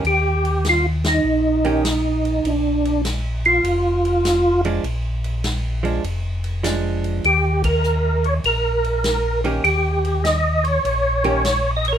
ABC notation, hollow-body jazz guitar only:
X:1
M:4/4
L:1/8
Q:"Swing" 1/4=100
K:Eb
V:1 name="Hollow-body jazz guitar"
z4 z [E,B,_DG] z2 | z6 z [F,A,D] | z3 [F,A,D] z2 [F,A,D]2 | z6 z [E,B,_DG] |
z4 z [E,B,_DG] z2 |]